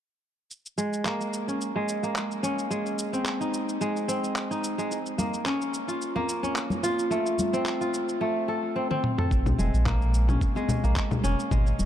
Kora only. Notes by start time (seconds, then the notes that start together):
0.78 G#3
1.05 A#3
1.48 C#4
1.76 G#3
2.03 A#3
2.43 C#4
2.70 G#3
3.13 C4
3.41 D#4
3.81 G#3
4.08 C4
4.51 D#4
4.78 G#3
5.18 A#3
5.46 C#4
5.88 F4
6.16 A#3
6.43 C#4
6.83 F4
7.11 A3
7.53 C4
7.81 F4
8.21 A3
8.48 A4
8.76 C4
8.91 C4
9.18 A4
9.58 G#3
9.86 A#3
10.28 C#4
10.56 G#3
10.84 A#3
11.24 C#4
11.51 G#3